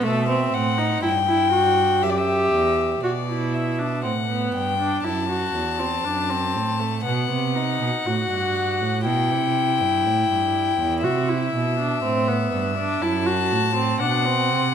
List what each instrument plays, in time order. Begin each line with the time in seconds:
0.04 cello B2, viola A3, violin E5
0.29 viola C4
0.53 cello A2, violin F#5
0.78 viola D#4
1.03 cello G2, viola E4, violin G5
1.28 viola E4
1.53 viola F#4
2.03 cello F#2, viola G4, violin E5
2.10 violin D5
2.18 violin E5
2.53 cello E2
3.03 cello B2, viola F#4, violin D5
3.28 viola E4
3.54 violin E5
3.79 viola D4
4.04 cello A2, viola C4, violin F#5
4.29 viola B3
4.54 cello G2, violin G5
4.79 viola D4
5.04 cello F#2, viola E4, violin A5
5.30 viola F#4
5.54 cello E2
5.80 viola C4
6.04 cello F#2, viola D4
6.30 viola C4
6.55 cello A2
6.80 viola A3
7.05 cello B2, viola B3, violin F#5
7.30 cello C3
7.55 viola D#4
7.81 cello B2
8.06 cello A2, viola F#4
8.30 cello G2
8.80 cello A2
9.05 cello B2, viola E4, violin G5
9.31 cello C3
9.81 cello G2
10.05 cello A2
10.30 cello G2
10.79 cello E2
11.04 cello C3, viola F#4, violin E5
11.29 viola E4
11.54 cello B2
11.79 viola D4
12.03 cello A2, viola C4
12.28 viola B3
12.53 cello G2
12.77 viola D4
13.02 cello F#2, viola E4, violin A5
13.26 viola F#4
13.52 cello A2
13.76 viola C4
14.00 cello B2, viola D4, violin F#5
14.25 viola C4
14.50 cello C3